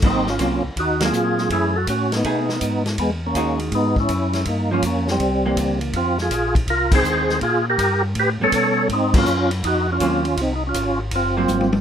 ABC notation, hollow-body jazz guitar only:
X:1
M:4/4
L:1/8
Q:"Swing" 1/4=162
K:Abmix
V:1 name="Hollow-body jazz guitar"
[G,B,C] z [G,B,C] z2 [G,B,C]3 | [_F,=A,D] z3 [A,^D^G] z3 | z2 [^G,^D^F]3 z3 | z [F,B,D] z3 [=E,B,]3 |
z4 z [E,A,C]3 | z4 z [=G,=B,^C]3 | z [G,B,C] z4 [G,B,C] z | z4 z [G,B,C]3 |]